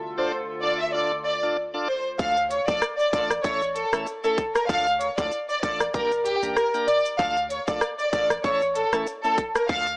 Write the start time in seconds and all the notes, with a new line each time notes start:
Already playing: D2 D3 F4 A4
0.18 D4 F4 A4 C5 D5
0.62 D4 F4 A4 D5
0.80 E5
0.94 D4 F4 A4 D5
1.25 D5
1.43 D4 F4 A4 D5
1.74 D4 F4 A4 D5
1.88 C5
2.19 D2 A3 D4 F4 A4 F5, kick, shaker, maracas
2.37 shaker, maracas
2.50 C#5, closed hi-hat, shaker, maracas
2.68 A#1 A3 D4 F4 A4 D5, kick, shaker, maracas
2.82 cross-stick, shaker, maracas
2.99 D5, maracas, shaker
3.13 A1 A3 D4 F4 A4 D5, kick, closed hi-hat, maracas, shaker
3.30 cross-stick, maracas, shaker
3.44 A1 A3 C#4 E4 A4 C#5, kick, maracas, shaker
3.61 maracas, shaker
3.75 A4, closed hi-hat, shaker
3.93 A1 A3 C#4 E4 A4, cross-stick, shaker, maracas
4.07 shaker, maracas
4.24 A3 C#4 E4 A4, shaker, maracas
4.38 kick, closed hi-hat, maracas, shaker
4.55 A#4, cross-stick, maracas, shaker
4.69 D2 A3 D4 F4 A4 F5, kick, maracas, shaker
4.86 maracas, shaker
5.00 C#5, closed hi-hat, maracas, shaker
5.17 D2 A3 D4 F4 A4 D5, kick, high timbale, maracas, shaker
5.31 maracas, shaker
5.49 D5, maracas, shaker
5.63 A1 A3 D4 F4 A4 D5, kick, closed hi-hat, maracas, shaker
5.80 cross-stick, maracas, shaker
5.94 G1 A#3 D4 G4 A#4, kick, maracas, shaker
6.11 maracas, shaker
6.26 G4, closed hi-hat, shaker
6.43 A1 A#3 D4 G4 A#4, shaker, maracas
6.56 A#4, cross-stick, shaker, maracas
6.74 A#3 D4 G4 A#4, maracas, shaker
6.88 D5, closed hi-hat, maracas, shaker
7.05 maracas, shaker
7.19 D2 A3 D4 F4 A4 F5, kick, shaker, maracas
7.37 shaker, maracas
7.50 C#5, closed hi-hat, shaker, maracas
7.68 A#1 A3 D4 F4 A4 D5, kick, shaker, maracas
7.81 cross-stick, shaker, maracas
7.99 D5, shaker, maracas
8.12 A1 A3 D4 F4 A4 D5, kick, closed hi-hat, shaker, maracas
8.30 cross-stick, shaker, maracas
8.44 A1 A3 C#4 E4 A4 C#5, kick, shaker, maracas
8.62 shaker, maracas
8.75 A4, closed hi-hat, shaker
8.93 A1 A3 C#4 E4 A4, cross-stick, shaker, maracas
9.07 shaker, maracas
9.24 A3 C#4 E4 A4, shaker, maracas
9.38 kick, closed hi-hat, maracas, shaker
9.55 A#4, cross-stick, maracas, shaker
9.69 D2 A3 D4 F4 A4 F5, kick, shaker, maracas
9.86 maracas, shaker